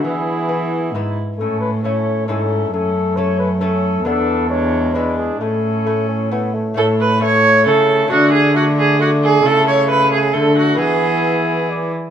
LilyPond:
<<
  \new Staff \with { instrumentName = "Cornet" } { \time 3/4 \key a \major \tempo 4 = 134 gis'2 r4 | a'8 b'8 cis''4 a'4 | a'4 cis''8 b'8 a'4 | a'4 cis''4 b'8 gis'8 |
a'2~ a'8 r8 | cis''4 cis''4 cis''4 | d''4 d''4 d''4 | e''2 e''4 |
e''2 d''8 r8 | }
  \new Staff \with { instrumentName = "Viola" } { \time 3/4 \key a \major e'2~ e'8 r8 | cis'4 cis'4 cis'4 | cis'4 cis'4 cis'4 | d'4 d'4 d'4 |
cis'2~ cis'8 r8 | a'8 b'8 cis''4 a'4 | fis'8 gis'8 fis'8 gis'8 fis'8 gis'8 | a'8 cis''8 b'8 gis'8 a'8 fis'8 |
gis'2 r4 | }
  \new Staff \with { instrumentName = "Lute" } { \time 3/4 \key a \major r4 <b e'>4 <b e'>4 | r4 <a cis' e'>4 <cis' e' a'>4 | r4 <a cis' a'>4 <a cis' a'>4 | <b d' e'>4 r4 <gis d' e'>4 |
r4 <a cis' e'>4 <a cis' e'>4 | <a cis' e'>4 <a cis' e'>4 <a cis' e'>4 | <a d' fis'>2. | <a e'>2. |
<b e'>2. | }
  \new Staff \with { instrumentName = "Lute" } { \clef bass \time 3/4 \key a \major e2 gis,8 r8 | a,2 gis,4 | fis,2. | e,2. |
a,2~ a,8 r8 | a,2 cis4 | d2. | cis2 d4 |
e2~ e8 r8 | }
  \new Staff \with { instrumentName = "Bassoon" } { \time 3/4 \key a \major b2~ b8 r8 | a4 a4 a4 | a4 a4 a4 | b4 gis4 gis4 |
a4 a8 cis'8 b8 a8 | a4 a4 a4 | a4 a4 a4 | a2 a4 |
b2~ b8 r8 | }
  \new Staff \with { instrumentName = "Cello" } { \clef bass \time 3/4 \key a \major e2 gis,8 r8 | a,2 gis,4 | fis,2. | e,2. |
a,2~ a,8 r8 | a,2 cis4 | d2. | cis2 d4 |
e2~ e8 r8 | }
>>